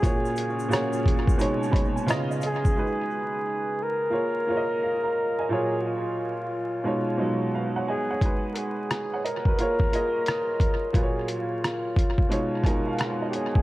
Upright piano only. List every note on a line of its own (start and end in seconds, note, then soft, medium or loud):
0.02 0.54 A#2 medium
0.02 0.55 A#3 medium
0.02 0.55 F4 medium
0.02 0.55 F#4 medium
0.02 0.56 G#4 medium
0.02 0.56 C#5 loud
0.68 1.38 A#2 loud
0.68 1.38 A#3 medium
0.68 1.39 F4 medium
0.68 1.39 F#4 medium
0.68 1.40 G#4 medium
0.68 1.39 C#5 loud
1.38 1.68 B2 loud
1.38 1.69 G#3 medium
1.38 1.69 D#4 medium
1.38 1.70 C#5 loud
1.70 2.06 B2 medium
1.70 2.07 G#3 medium
1.70 2.07 D#4 medium
1.70 2.08 C#5 medium
1.70 1.94 B5 medium
1.96 2.07 G#5 medium
2.06 2.66 C#3 loud
2.06 2.66 B3 medium
2.06 2.67 F4 medium
2.06 2.29 D#5 loud
2.06 2.29 F5 medium
2.30 2.41 D#5 medium
2.43 2.74 D#5 medium
2.76 3.73 G#3 medium
2.76 3.74 D#4 medium
2.76 3.74 F#4 medium
2.76 3.75 B4 medium
4.10 4.41 A#3 medium
4.10 4.41 F4 medium
4.10 4.42 G#4 medium
4.10 4.42 C#5 medium
4.47 5.19 A#3 medium
4.47 5.20 F4 medium
4.47 5.20 G#4 medium
4.47 4.57 C#5 medium
4.57 4.86 D#5 medium
4.83 5.03 A#4 soft
4.83 5.03 F5 medium
5.04 5.36 F5 medium
5.04 5.36 A#5 medium
5.39 5.71 D#5 medium
5.39 5.70 G#5 medium
5.49 6.46 A#2 medium
5.49 6.47 F#3 medium
5.49 6.47 A#3 medium
5.49 6.47 F4 medium
5.49 6.48 G#4 medium
5.49 6.48 C#5 medium
6.84 7.14 B2 medium
6.84 7.14 G#3 medium
6.84 7.15 D#4 medium
6.84 7.16 C#5 medium
7.17 7.91 B2 medium
7.17 7.93 F#3 medium
7.17 7.91 G#3 medium
7.17 7.92 D#4 medium
7.55 7.76 B4 soft
7.55 7.75 F5 medium
7.76 7.87 C#5 medium
7.76 7.87 F#5 medium
7.88 8.10 D#5 medium
7.88 8.09 G#5 medium
8.11 8.43 C#5 medium
8.11 8.43 F#5 medium
8.22 9.19 G#3 medium
8.22 9.20 D#4 medium
8.22 8.91 F#4 medium
8.22 8.92 B4 medium
9.14 9.24 C#5 medium
9.14 9.24 F#5 medium
9.25 9.46 A#4 medium
9.25 9.45 D#5 medium
9.48 9.80 F#4 soft
9.48 9.79 B4 medium
9.59 9.88 A#3 medium
9.59 9.88 F4 medium
9.59 9.89 G#4 medium
9.59 9.89 C#5 medium
9.92 10.65 A#3 medium
9.92 10.65 F4 medium
9.92 10.66 G#4 medium
9.92 10.66 D#5 medium
10.93 11.91 A#2 medium
10.93 11.92 F#3 medium
10.93 11.91 A#3 medium
10.93 11.92 F4 medium
10.93 11.92 G#4 medium
10.93 11.04 B4 medium
11.03 11.96 C#5 medium
12.29 12.59 B2 medium
12.29 12.60 G#3 medium
12.29 12.60 D#4 medium
12.29 12.61 C#5 medium
12.63 13.36 B2 medium
12.63 13.37 G#3 medium
12.63 13.38 D#4 medium
12.63 13.38 A#4 medium
12.63 12.85 G#5 medium
12.87 12.98 F5 medium
12.99 13.20 F#5 medium
13.22 13.32 D#5 medium
13.35 13.62 C#5 medium